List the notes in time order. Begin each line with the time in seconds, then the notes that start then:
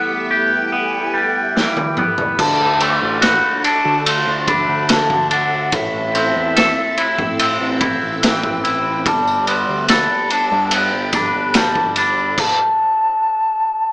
Already playing: E2 G3 A3 B3 E4 G4 E5 F#5
0.31 G4
0.50 G5
0.72 B3
1.14 G3
1.56 E3 G5, snare
1.77 high tom
1.97 B3 G5, mid tom
2.18 floor tom
2.39 D2 D3 D4 F#4 A4 F#5 A5, kick, crash
2.80 A3 C6, ride
2.89 D6
2.96 C6
3.02 A1
3.22 F#4 B5, snare, ride
3.64 D4 A5, ride
3.85 D3
4.06 A3 C6, ride
4.27 D2
4.48 D4 B5, kick, ride
4.69 D2
4.89 D3 A5, snare, ride
5.10 kick
5.31 D4 F#5, ride
5.72 A1 A2 C4 E4 E5, kick, ride
6.15 C4, ride
6.36 E2
6.56 A4, snare, ride
6.97 E4, ride
7.19 A2, kick
7.39 C4, ride
7.61 A1
7.81 E4, kick, ride
8.02 A1
8.23 E3 G5, snare, ride
8.43 kick
8.64 E4 G5, ride
9.05 G1 G3 B3 G4 D5 A5, kick, ride, tambourine
9.27 tambourine
9.47 B3 C6, ride
9.69 D2
9.88 A4 B5, snare, ride, tambourine
10.30 D4 A5, ride
10.52 G2
10.71 B3 G5, ride, tambourine
10.93 G1
11.13 D4 B5, kick, snare, ride, tambourine
11.35 G1
11.54 G3 A5, snare, ride, tambourine
11.75 kick
11.96 D4 B5, ride, tambourine
12.17 tambourine
12.38 A5, kick, crash